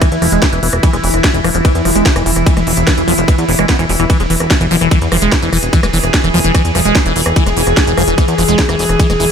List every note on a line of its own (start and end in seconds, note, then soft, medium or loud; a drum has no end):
0.00 9.32 E3 medium
0.00 0.09 E3 medium
0.00 4.12 E4 medium
0.00 kick loud
0.00 cross-stick medium
0.00 closed hi-hat medium
0.00 ride medium
0.12 0.18 E2 medium
0.12 closed hi-hat medium
0.22 0.29 E1 loud
0.22 0.27 F3 medium
0.22 cross-stick soft
0.22 open hi-hat loud
0.32 0.39 E1 medium
0.32 0.44 G#3 medium
0.32 closed hi-hat medium
0.42 0.45 D3 medium
0.42 kick loud
0.42 cross-stick soft
0.42 snare loud
0.42 closed hi-hat medium
0.42 ride medium
0.53 0.59 E1 medium
0.53 0.60 E3 medium
0.53 closed hi-hat medium
0.63 0.69 E1 loud
0.63 0.68 E3 medium
0.63 open hi-hat loud
0.73 0.80 E1 medium
0.73 cross-stick medium
0.73 closed hi-hat medium
0.83 0.91 E3 medium
0.83 kick loud
0.83 closed hi-hat loud
0.83 ride medium
0.93 1.00 E1 medium
0.93 0.96 G#3 medium
0.93 cross-stick soft
0.93 closed hi-hat medium
1.04 1.10 E1 loud
1.04 1.09 E3 medium
1.04 open hi-hat loud
1.14 1.20 E1 loud
1.14 cross-stick soft
1.14 closed hi-hat medium
1.24 kick loud
1.24 snare loud
1.24 closed hi-hat medium
1.24 ride medium
1.34 1.41 E1 medium
1.34 1.39 E3 medium
1.34 closed hi-hat medium
1.44 1.51 E1 loud
1.44 1.50 F3 loud
1.44 cross-stick medium
1.44 open hi-hat loud
1.55 1.61 E1 loud
1.55 1.58 F3 medium
1.55 closed hi-hat medium
1.65 1.73 E3 medium
1.65 kick loud
1.65 cross-stick soft
1.65 closed hi-hat medium
1.65 ride medium
1.75 1.82 E2 medium
1.75 closed hi-hat medium
1.85 1.92 E1 loud
1.85 1.90 F3 medium
1.85 cross-stick soft
1.85 open hi-hat loud
1.95 2.02 E1 medium
1.95 2.07 G#3 medium
1.95 closed hi-hat medium
2.06 2.09 D3 medium
2.06 kick loud
2.06 snare loud
2.06 closed hi-hat medium
2.06 ride medium
2.16 2.22 E1 medium
2.16 2.24 E3 medium
2.16 cross-stick medium
2.16 closed hi-hat medium
2.26 2.33 E1 loud
2.26 2.31 E3 medium
2.26 open hi-hat loud
2.36 2.43 E1 medium
2.36 cross-stick soft
2.36 closed hi-hat medium
2.46 2.54 E3 medium
2.46 kick loud
2.46 closed hi-hat medium
2.46 ride medium
2.57 2.63 E1 medium
2.57 2.60 G#3 medium
2.57 cross-stick soft
2.57 closed hi-hat soft
2.67 2.73 E1 loud
2.67 2.72 E3 medium
2.67 open hi-hat loud
2.77 2.84 E1 loud
2.77 closed hi-hat medium
2.87 kick loud
2.87 cross-stick medium
2.87 snare loud
2.87 closed hi-hat medium
2.87 ride medium
2.97 3.04 E1 medium
2.97 3.03 E3 medium
2.97 closed hi-hat medium
3.08 3.14 E1 loud
3.08 3.13 F3 loud
3.08 open hi-hat loud
3.18 3.25 E1 medium
3.18 3.21 F3 medium
3.18 closed hi-hat soft
3.28 3.36 E3 medium
3.28 kick loud
3.28 cross-stick soft
3.28 closed hi-hat medium
3.28 ride medium
3.38 3.45 E2 medium
3.38 closed hi-hat soft
3.49 3.55 E1 loud
3.49 3.52 E3 medium
3.49 open hi-hat loud
3.59 3.65 E1 medium
3.59 3.67 G#3 medium
3.59 cross-stick medium
3.59 closed hi-hat medium
3.69 3.77 B3 medium
3.69 kick loud
3.69 snare loud
3.69 closed hi-hat medium
3.69 ride medium
3.79 3.86 E1 medium
3.79 3.84 E3 medium
3.79 cross-stick soft
3.79 closed hi-hat medium
3.89 3.96 E1 loud
3.89 3.92 F3 medium
3.89 open hi-hat loud
4.00 4.06 E1 medium
4.00 4.05 E3 medium
4.00 cross-stick soft
4.00 closed hi-hat soft
4.10 4.18 E3 medium
4.10 9.32 G#4 medium
4.10 kick loud
4.10 cross-stick soft
4.10 closed hi-hat medium
4.10 ride medium
4.20 4.27 E1 medium
4.20 4.23 G#3 medium
4.20 closed hi-hat soft
4.30 4.37 E1 loud
4.30 4.35 E3 medium
4.30 open hi-hat loud
4.40 4.47 E1 medium
4.40 cross-stick medium
4.40 closed hi-hat soft
4.51 kick loud
4.51 snare loud
4.51 closed hi-hat medium
4.51 ride medium
4.61 4.67 E1 medium
4.61 4.66 E3 medium
4.61 cross-stick soft
4.61 closed hi-hat medium
4.71 4.78 E1 loud
4.71 4.76 F3 loud
4.71 open hi-hat loud
4.81 4.88 E1 medium
4.81 4.89 E3 medium
4.81 cross-stick soft
4.81 closed hi-hat medium
4.91 4.99 E3 medium
4.91 kick loud
4.91 closed hi-hat medium
4.91 ride medium
5.02 5.08 E2 medium
5.02 closed hi-hat medium
5.12 5.18 E1 loud
5.12 5.17 F3 medium
5.12 cross-stick medium
5.12 open hi-hat loud
5.22 5.29 E1 loud
5.22 5.34 G#3 medium
5.22 closed hi-hat soft
5.32 5.35 D3 medium
5.32 kick loud
5.32 cross-stick soft
5.32 snare loud
5.32 closed hi-hat medium
5.32 ride medium
5.42 5.49 E1 medium
5.42 5.50 E3 medium
5.42 closed hi-hat medium
5.53 5.59 E1 loud
5.53 5.58 E3 medium
5.53 cross-stick soft
5.53 open hi-hat loud
5.63 5.69 E1 medium
5.63 closed hi-hat medium
5.73 5.81 E3 medium
5.73 kick loud
5.73 closed hi-hat medium
5.73 ride medium
5.83 5.90 E1 medium
5.83 5.86 G#3 medium
5.83 cross-stick medium
5.83 closed hi-hat medium
5.93 6.00 E1 loud
5.93 5.99 E3 medium
5.93 open hi-hat loud
6.04 6.10 E1 loud
6.04 cross-stick soft
6.04 closed hi-hat medium
6.14 kick loud
6.14 snare loud
6.14 closed hi-hat medium
6.14 ride medium
6.24 6.31 E1 medium
6.24 6.29 E3 medium
6.24 cross-stick soft
6.24 closed hi-hat medium
6.34 6.41 E1 loud
6.34 6.39 F3 loud
6.34 open hi-hat loud
6.44 6.51 E1 medium
6.44 6.52 E3 medium
6.44 closed hi-hat medium
6.55 6.62 E3 medium
6.55 kick loud
6.55 cross-stick medium
6.55 closed hi-hat medium
6.55 ride medium
6.65 6.71 E2 medium
6.65 closed hi-hat medium
6.75 6.82 E1 loud
6.75 6.80 F3 medium
6.75 cross-stick soft
6.75 open hi-hat loud
6.85 6.92 E1 medium
6.85 6.97 G#3 medium
6.85 closed hi-hat medium
6.95 6.99 D3 medium
6.95 kick loud
6.95 cross-stick soft
6.95 snare loud
6.95 closed hi-hat medium
6.95 ride medium
7.06 7.12 E1 medium
7.06 7.13 E3 medium
7.06 closed hi-hat medium
7.16 7.22 E1 loud
7.16 7.21 E3 medium
7.16 open hi-hat loud
7.26 7.33 E1 medium
7.26 cross-stick medium
7.26 closed hi-hat medium
7.36 7.44 E3 medium
7.36 kick loud
7.36 closed hi-hat loud
7.36 ride medium
7.46 7.53 E1 medium
7.46 7.50 G#3 medium
7.46 cross-stick soft
7.46 closed hi-hat medium
7.57 7.63 E1 loud
7.57 7.62 E3 medium
7.57 open hi-hat loud
7.67 7.73 E1 loud
7.67 cross-stick soft
7.67 closed hi-hat medium
7.77 kick loud
7.77 snare loud
7.77 closed hi-hat medium
7.77 ride medium
7.87 7.94 E1 medium
7.87 7.92 E3 medium
7.87 closed hi-hat medium
7.97 8.04 E1 loud
7.97 8.03 F3 loud
7.97 cross-stick medium
7.97 open hi-hat loud
8.08 8.14 E1 loud
8.08 8.15 E3 medium
8.08 closed hi-hat medium
8.18 8.26 E3 medium
8.18 kick loud
8.18 cross-stick soft
8.18 closed hi-hat medium
8.18 ride medium
8.28 8.35 E2 medium
8.28 closed hi-hat medium
8.38 8.45 E1 loud
8.38 8.43 F3 medium
8.38 cross-stick soft
8.38 open hi-hat loud
8.48 8.55 E1 medium
8.48 8.60 G#3 medium
8.48 closed hi-hat medium
8.59 8.62 D3 medium
8.59 kick loud
8.59 snare loud
8.59 closed hi-hat loud
8.59 ride medium
8.69 8.76 E1 medium
8.69 8.77 E3 medium
8.69 cross-stick medium
8.69 closed hi-hat medium
8.79 8.86 E1 loud
8.79 8.84 E3 medium
8.79 open hi-hat loud
8.89 8.96 E1 medium
8.89 cross-stick soft
8.89 closed hi-hat medium
8.99 9.07 E3 medium
8.99 kick loud
8.99 closed hi-hat loud
8.99 ride medium
9.10 9.16 E1 medium
9.10 9.13 G#3 medium
9.10 cross-stick soft
9.10 closed hi-hat medium
9.20 9.27 E1 loud
9.20 9.25 E3 medium
9.20 open hi-hat loud